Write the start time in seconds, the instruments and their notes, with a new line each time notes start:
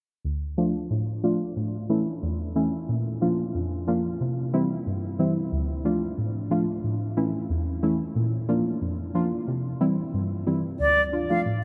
0.24 synth stab D2
0.57 synth stab F3 A3 D4 F4
0.90 synth stab A2
1.23 synth stab F3 A3 D4 F4
1.56 synth stab A2
1.89 synth stab E3 A3 C#4 E4
2.22 synth stab E2
2.55 synth stab E3 A3 C#4 E4
2.89 synth stab A#2
3.21 synth stab F3 A#3 D4 F4
3.55 synth stab F2
3.87 synth stab F3 A#3 D4 F4
4.21 synth stab C3
4.53 synth stab E3 G3 C4 E4
4.86 synth stab G2
5.19 synth stab E3 G3 C4 E4
5.52 synth stab D2
5.85 synth stab F3 A3 D4 F4
6.18 synth stab A2
6.51 synth stab F3 A3 D4 F4
6.84 synth stab A2
7.17 synth stab E3 A3 C#4 E4
7.50 synth stab E2
7.83 synth stab E3 A3 C#4 E4
8.16 synth stab A#2
8.48 synth stab F3 A#3 D4 F4
8.81 synth stab F2
9.14 synth stab F3 A#3 D4 F4
9.47 synth stab C3
9.80 synth stab E3 G3 C4 E4
10.14 synth stab G2
10.46 synth stab E3 G3 C4 E4
10.80 synth stab D2, flute D5
11.12 synth stab D4 F4
11.30 synth stab F3 A3 D4 F4, flute F5
11.46 synth stab A2